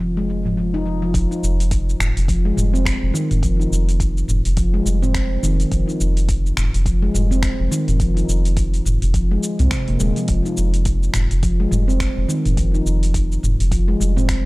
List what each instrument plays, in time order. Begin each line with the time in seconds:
Already playing: analog synth bass F1
0.00 handpan F3, cabasa
0.17 handpan G#3, cabasa
0.29 cabasa
0.45 handpan F3, mid tom, cabasa
0.57 handpan F3, cabasa
0.74 handpan D#4
0.86 handpan F3, cabasa
1.02 handpan F3, cabasa
1.14 analog synth bass F1, handpan F3, kick, open hi-hat, cabasa
1.31 handpan D#4, cabasa
1.43 analog synth bass F1, cabasa
1.60 open hi-hat, cabasa
1.71 kick, open hi-hat, cabasa
1.90 cabasa
2.00 analog synth bass F1, finger snap, mid tom, cabasa
2.17 analog synth bass F1, open hi-hat, cabasa
2.28 handpan F3, kick, open hi-hat, cabasa
2.45 handpan G#3
2.57 analog synth bass F1, handpan G3, mid tom, cabasa
2.74 handpan C4, cabasa
2.85 handpan C4, finger snap, kick, open hi-hat, cabasa
3.02 analog synth bass F1
3.14 handpan D#3, cabasa
3.31 analog synth bass F1, mid tom, open hi-hat, cabasa
3.42 handpan F3, kick, open hi-hat, cabasa
3.60 handpan D#4, cabasa
3.71 analog synth bass F1, cabasa
3.89 open hi-hat, cabasa
4.00 kick, open hi-hat, cabasa
4.18 cabasa
4.28 analog synth bass F1, mid tom, cabasa
4.45 analog synth bass F1, open hi-hat, cabasa
4.57 handpan F3, kick, open hi-hat, cabasa
4.74 handpan G#3
4.86 analog synth bass F1, handpan G3, cabasa
5.02 handpan C4, mid tom, cabasa
5.14 finger snap, kick, open hi-hat, cabasa
5.43 analog synth bass F1, handpan D#3, cabasa
5.60 open hi-hat, cabasa
5.71 analog synth bass F1, handpan F3, kick, open hi-hat, cabasa
5.88 handpan D#4, cabasa
6.00 analog synth bass F1, cabasa
6.17 open hi-hat, cabasa
6.29 kick, open hi-hat, cabasa
6.46 cabasa
6.57 analog synth bass F1, finger snap, mid tom, cabasa
6.74 analog synth bass F1, open hi-hat, cabasa
6.86 handpan F3, kick, open hi-hat, cabasa
7.02 handpan G#3
7.14 analog synth bass F1, handpan G3, mid tom, cabasa
7.31 handpan C4, cabasa
7.43 handpan C4, finger snap, kick, open hi-hat, cabasa
7.60 analog synth bass F1
7.71 handpan D#3, cabasa
7.88 analog synth bass F1, mid tom, open hi-hat, cabasa
8.00 handpan F3, kick, open hi-hat, cabasa
8.17 handpan D#4, open hi-hat, cabasa
8.28 analog synth bass F1, cabasa
8.45 open hi-hat, cabasa
8.57 kick, open hi-hat, cabasa
8.74 open hi-hat, cabasa
8.85 analog synth bass F1, mid tom, cabasa
9.02 analog synth bass F1, open hi-hat, cabasa
9.14 handpan F3, kick, open hi-hat, cabasa
9.31 handpan G#3
9.43 cabasa
9.59 analog synth bass C2, handpan C4, mid tom, open hi-hat, cabasa
9.71 handpan C3, finger snap, kick, open hi-hat, cabasa
9.88 analog synth bass F1, handpan A#3, open hi-hat
10.00 analog synth bass D#1, handpan G#3, cabasa
10.16 handpan F3, open hi-hat, cabasa
10.28 analog synth bass F1, handpan F3, kick, open hi-hat, cabasa
10.45 handpan D#4, cabasa
10.57 analog synth bass F1, cabasa
10.74 open hi-hat, cabasa
10.85 kick, open hi-hat, cabasa
11.03 cabasa
11.14 analog synth bass F1, finger snap, mid tom, cabasa
11.31 analog synth bass F1, open hi-hat, cabasa
11.43 handpan F3, kick, open hi-hat, cabasa
11.60 handpan G#3
11.71 analog synth bass F1, handpan G3, mid tom, cabasa
11.88 handpan C4, cabasa
12.00 handpan C4, finger snap, kick, open hi-hat, cabasa
12.17 analog synth bass F1
12.28 handpan D#3, cabasa
12.45 analog synth bass F1, mid tom, open hi-hat, cabasa
12.57 handpan F3, kick, open hi-hat, cabasa
12.74 handpan D#4, cabasa
12.86 analog synth bass F1, cabasa
13.03 open hi-hat, cabasa
13.14 kick, open hi-hat, cabasa
13.32 cabasa
13.43 analog synth bass F1, mid tom, cabasa
13.60 analog synth bass F1, open hi-hat, cabasa
13.71 handpan F3, kick, open hi-hat, cabasa
13.88 handpan G#3
14.00 analog synth bass F1, handpan G3, cabasa
14.17 handpan C4, mid tom, cabasa
14.29 handpan C4, finger snap, kick, open hi-hat, cabasa